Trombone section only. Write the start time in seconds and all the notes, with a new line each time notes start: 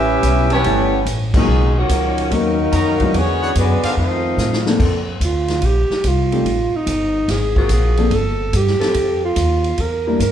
Already playing: G3 C#4 E4
0.51 E3 G3 C#4
1.32 A#2 D#3 G#3
1.76 A#2 D#3 F#3
2.32 D#3 F#3 A#3
3.14 D3 G#3 C#4
3.55 D3 G#3 B3
3.97 D#3 A3 C4